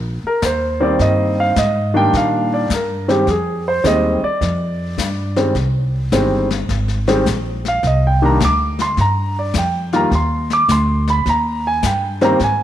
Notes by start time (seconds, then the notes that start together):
Already playing: A#1
0.24 A#4, muted upright bass stroke
0.42 D#2 C5, kick, snare, hi-hat pedal
0.80 D#3 G3 A#3 C4 D5
0.99 G2 D#5, brush sweep, kick, snare
1.40 F5
1.56 G#2 D#5, kick, snare, hi-hat pedal
1.94 D#3 G3 A#3 D4 G5
2.13 A#2 F5, brush sweep, kick, snare
2.54 D5
2.70 G2 A#4, kick, snare, hi-hat pedal
3.08 D#3 G3 G#3 C4 G4, snare
3.27 F2 G#4, brush sweep, kick, snare
3.68 C5
3.84 D#2 D#3 G3 G#3 C4 D#5, kick, snare, hi-hat pedal
4.23 D5, muted upright bass stroke
4.41 F2, brush sweep, kick, snare
4.98 G2, kick, snare, hi-hat pedal
5.36 D#3 G3 G#3 C4, snare
5.55 C2, brush sweep, kick, snare
6.12 G1 D#3 G3 G#3 C4, kick, snare, hi-hat pedal
6.51 snare
6.69 G#1, brush sweep, kick, snare
6.88 snare
7.07 D#3 G3 G#3 C4, snare
7.26 A#1, kick, snare, hi-hat pedal
7.65 F5, snare
7.83 C2, brush sweep, kick, snare
7.87 D#5
8.07 G5
8.22 D#3 G3 A#3 D4 A#5
8.40 D2, kick, snare, hi-hat pedal
8.45 D6
8.79 C6, snare
8.97 G2 A#5, brush sweep, kick, snare
9.39 D5
9.54 F2, kick, snare, hi-hat pedal
9.58 G5
9.93 D#3 G3 A#3 F4 A#5, snare
10.11 D#2, brush sweep, kick, snare
10.15 C6
10.50 D6, snare
10.68 D2 C6, kick, snare, hi-hat pedal
11.07 B5, snare
11.26 D#2 A#5, brush sweep, kick, snare
11.67 G#5
11.83 G2 G5, kick, snare, hi-hat pedal
12.21 D#3 G3 A#3 C4 A#5, snare
12.39 G#2, brush sweep, kick, snare
12.44 G#5